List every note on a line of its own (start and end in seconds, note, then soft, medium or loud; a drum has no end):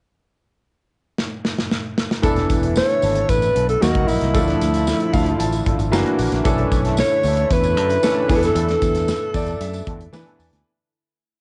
1.19 snare medium
1.45 snare medium
1.59 snare medium
1.71 snare medium
1.98 snare medium
2.11 snare medium
2.22 2.43 E1 loud
2.22 3.80 D3 medium
2.22 3.17 E3 medium
2.22 3.80 A3 medium
2.22 3.18 B3 medium
2.22 2.37 B3 medium
2.22 3.18 D4 medium
2.22 2.36 D4 medium
2.22 3.80 E4 medium
2.22 3.18 A4 medium
2.22 2.35 A4 medium
2.22 kick medium
2.22 closed hi-hat medium
2.22 tambourine soft
2.36 muted clean electric guitar stroke soft
2.36 snare soft
2.36 closed hi-hat soft
2.50 2.79 E1 medium
2.50 muted clean electric guitar stroke soft
2.50 kick medium
2.50 snare soft
2.50 closed hi-hat medium
2.50 tambourine soft
2.63 2.75 B3 soft
2.63 2.74 D4 soft
2.63 2.74 A4 medium
2.63 closed hi-hat soft
2.76 3.31 C#5 loud
2.76 muted clean electric guitar stroke soft
2.76 snare medium
2.76 tambourine medium
2.89 muted clean electric guitar stroke soft
2.89 closed hi-hat soft
3.02 3.23 G#1 medium
3.02 3.15 B3 medium
3.02 3.14 D4 medium
3.02 3.14 A4 medium
3.02 open hi-hat medium
3.02 tambourine soft
3.15 3.27 B3 soft
3.15 3.27 D4 medium
3.15 3.26 A4 medium
3.15 closed hi-hat soft
3.29 3.49 A1 medium
3.29 3.68 B4 medium
3.29 kick medium
3.29 closed hi-hat medium
3.29 tambourine soft
3.42 muted clean electric guitar stroke soft
3.42 closed hi-hat soft
3.42 tambourine soft
3.55 3.75 B1 medium
3.55 3.69 B3 medium
3.55 3.68 D4 medium
3.55 3.67 A4 medium
3.55 closed hi-hat medium
3.68 3.83 A4 medium
3.68 muted clean electric guitar stroke soft
3.68 closed hi-hat soft
3.81 3.92 D#2 medium
3.81 4.34 D#3 medium
3.81 4.29 F#3 medium
3.81 4.29 A#3 medium
3.81 4.35 A#3 medium
3.81 4.29 D#4 medium
3.81 4.09 F#4 medium
3.81 4.34 F#4 medium
3.81 4.29 A#4 medium
3.81 muted clean electric guitar stroke soft
3.81 snare loud
3.81 tambourine medium
3.94 4.05 C#2 medium
3.94 4.07 D#4 medium
3.94 4.07 F#4 medium
3.94 4.08 A#4 medium
3.94 kick medium
3.94 closed hi-hat soft
4.07 4.19 A#1 medium
4.07 6.19 E4 medium
4.07 muted clean electric guitar stroke soft
4.07 open hi-hat medium
4.07 tambourine soft
4.21 4.32 C2 medium
4.21 muted clean electric guitar stroke soft
4.21 snare soft
4.21 closed hi-hat medium
4.34 4.54 D2 loud
4.34 6.44 D3 medium
4.34 5.29 F3 medium
4.34 5.92 F3 medium
4.34 5.29 A3 medium
4.34 5.92 A3 medium
4.34 4.49 D4 medium
4.34 5.29 D4 medium
4.34 4.47 F4 medium
4.34 5.29 A4 medium
4.34 4.46 A4 medium
4.34 kick loud
4.34 closed hi-hat medium
4.34 tambourine medium
4.47 muted clean electric guitar stroke soft
4.47 snare soft
4.47 closed hi-hat soft
4.61 4.91 D2 medium
4.61 muted clean electric guitar stroke soft
4.61 snare soft
4.61 closed hi-hat medium
4.61 tambourine soft
4.74 4.86 D4 soft
4.74 4.85 F4 soft
4.74 4.85 A4 medium
4.74 closed hi-hat soft
4.74 tambourine soft
4.87 muted clean electric guitar stroke soft
4.87 snare medium
4.87 tambourine medium
5.00 muted clean electric guitar stroke medium
5.00 closed hi-hat soft
5.13 5.33 D2 medium
5.13 5.27 D4 medium
5.13 5.27 F4 medium
5.13 5.26 A4 medium
5.13 5.38 F5 medium
5.13 kick medium
5.13 open hi-hat medium
5.13 tambourine soft
5.26 5.39 D4 medium
5.26 5.38 F4 medium
5.26 5.38 A4 medium
5.26 closed hi-hat medium
5.39 5.60 A1 medium
5.39 5.89 A5 medium
5.39 closed hi-hat medium
5.39 tambourine soft
5.52 muted clean electric guitar stroke soft
5.52 closed hi-hat soft
5.52 tambourine soft
5.65 5.93 G#1 medium
5.65 5.80 D4 medium
5.65 5.79 F4 medium
5.65 5.78 A4 medium
5.65 kick medium
5.65 closed hi-hat medium
5.79 muted clean electric guitar stroke soft
5.79 closed hi-hat soft
5.79 tambourine soft
5.91 6.03 F#1 loud
5.91 6.39 E3 medium
5.91 6.39 A#3 medium
5.91 6.46 A#3 medium
5.91 6.40 D4 medium
5.91 10.63 E4 medium
5.91 6.40 F#4 medium
5.91 6.41 A#5 medium
5.91 muted clean electric guitar stroke soft
5.91 snare loud
5.91 tambourine medium
6.06 6.18 D4 medium
6.06 6.18 E4 medium
6.06 6.19 A#4 medium
6.06 closed hi-hat soft
6.19 6.29 A#1 medium
6.19 muted clean electric guitar stroke soft
6.19 open hi-hat medium
6.19 tambourine soft
6.32 6.42 A#1 medium
6.32 muted clean electric guitar stroke soft
6.32 snare soft
6.32 closed hi-hat medium
6.44 6.65 B1 loud
6.44 10.62 D3 medium
6.44 7.39 E3 medium
6.44 10.62 A3 medium
6.44 7.39 C#4 medium
6.44 7.39 D4 medium
6.44 6.59 D4 medium
6.44 6.58 E4 medium
6.44 7.39 A4 medium
6.44 6.57 A4 medium
6.44 8.28 C#5 medium
6.44 kick loud
6.44 closed hi-hat medium
6.44 tambourine medium
6.58 muted clean electric guitar stroke medium
6.58 closed hi-hat soft
6.72 7.01 B1 medium
6.72 muted clean electric guitar stroke soft
6.72 kick medium
6.72 snare soft
6.72 closed hi-hat medium
6.72 tambourine soft
6.85 6.97 D4 soft
6.85 6.96 E4 soft
6.85 6.96 A4 medium
6.85 snare soft
6.85 closed hi-hat soft
6.97 7.54 C#5 loud
6.97 muted clean electric guitar stroke soft
6.97 snare medium
6.97 tambourine medium
7.11 muted clean electric guitar stroke soft
7.23 7.44 D2 medium
7.23 7.38 D4 medium
7.23 7.37 E4 medium
7.23 7.36 A4 medium
7.23 open hi-hat medium
7.23 tambourine soft
7.37 7.49 D4 medium
7.37 7.49 E4 medium
7.37 7.48 A4 medium
7.37 closed hi-hat medium
7.50 7.77 E2 medium
7.50 8.44 B4 loud
7.50 kick medium
7.50 closed hi-hat medium
7.50 tambourine soft
7.64 muted clean electric guitar stroke soft
7.64 closed hi-hat soft
7.64 tambourine soft
7.76 7.97 F#2 medium
7.76 7.91 D4 medium
7.76 7.90 E4 medium
7.76 7.89 A4 medium
7.76 closed hi-hat medium
7.90 muted clean electric guitar stroke medium
7.90 closed hi-hat soft
7.90 tambourine soft
8.02 8.26 E3 medium
8.02 8.29 C#4 medium
8.02 8.27 D4 medium
8.02 8.30 A4 medium
8.02 muted clean electric guitar stroke soft
8.02 snare loud
8.02 tambourine medium
8.16 8.27 D4 medium
8.16 8.28 E4 medium
8.16 8.28 A4 medium
8.28 8.49 E2 medium
8.28 9.23 E3 medium
8.28 9.23 B3 medium
8.28 9.23 D4 medium
8.28 8.36 G#4 medium
8.28 muted clean electric guitar stroke soft
8.28 kick loud
8.28 open hi-hat medium
8.28 tambourine medium
8.36 9.27 A4 medium
8.42 10.11 A4 medium
8.42 muted clean electric guitar stroke soft
8.42 snare soft
8.42 closed hi-hat medium
8.42 tambourine soft
8.55 8.75 E2 loud
8.55 8.69 D4 medium
8.55 8.68 E4 medium
8.55 8.67 A4 medium
8.55 closed hi-hat medium
8.55 tambourine medium
8.69 muted clean electric guitar stroke soft
8.69 snare soft
8.69 closed hi-hat soft
8.82 9.12 E2 medium
8.82 muted clean electric guitar stroke soft
8.82 kick medium
8.82 snare soft
8.82 closed hi-hat medium
8.82 tambourine soft
8.95 9.07 D4 medium
8.95 9.07 E4 medium
8.95 9.06 A4 medium
8.95 snare soft
8.95 closed hi-hat medium
8.95 tambourine soft
9.08 muted clean electric guitar stroke soft
9.08 snare loud
9.08 tambourine medium
9.21 muted clean electric guitar stroke soft
9.34 9.54 E2 medium
9.34 9.48 D4 medium
9.34 9.47 E4 medium
9.34 9.46 A4 loud
9.34 9.59 D5 medium
9.34 kick medium
9.34 open hi-hat medium
9.34 tambourine soft
9.47 9.59 D4 soft
9.47 9.59 E4 medium
9.47 9.59 A4 medium
9.47 closed hi-hat soft
9.47 tambourine soft
9.60 9.80 F#2 medium
9.60 10.10 E5 medium
9.60 closed hi-hat medium
9.60 tambourine soft
9.74 muted clean electric guitar stroke medium
9.74 closed hi-hat soft
9.74 tambourine soft
9.87 10.07 E2 medium
9.87 10.01 D4 medium
9.87 10.00 E4 medium
9.87 9.99 A4 medium
9.87 kick medium
9.87 closed hi-hat medium
10.00 muted clean electric guitar stroke soft
10.00 closed hi-hat soft
10.13 10.60 E3 medium
10.13 10.23 E3 loud
10.13 10.60 B3 medium
10.13 10.60 D4 medium
10.13 10.61 B4 medium
10.13 10.38 G#5 medium
10.13 snare loud
10.13 tambourine medium
10.26 10.38 D4 medium
10.26 10.39 E4 medium
10.26 10.39 A4 medium
10.26 closed hi-hat soft
10.39 10.49 E2 medium
10.39 10.64 A5 medium
10.39 muted clean electric guitar stroke soft
10.39 open hi-hat medium
10.39 tambourine medium
10.52 10.62 D2 medium
10.52 muted clean electric guitar stroke soft
10.52 snare soft
10.52 closed hi-hat medium
10.52 tambourine soft